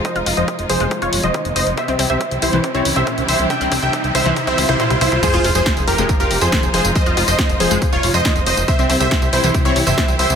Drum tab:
CC |----------------|----------------|----------------|x---------------|
HH |xxoxxxoxxxoxxxox|xxo-xxoxxxo-xxox|xxoxxxo-xxoxxxox|xxoxxxoxxxoxxxox|
TB |----------------|----------------|----------------|xx-xxx-xxx-xxx-x|
SD |----------------|----------------|----------------|----o-------o---|
BD |o---o---o---o---|o---o---o---o---|o-o-o-o-oooooooo|o---o---o---o---|

CC |----------------|----------------|
HH |xxo-xxoxxxo-xxox|xxoxxxoxxxoxxxo-|
TB |xx-xxx-xxx-xxx-x|xx-xxx-xxx-xxx-x|
SD |----o-------o---|----o-------o---|
BD |o---o---o---o---|o---o---o---o---|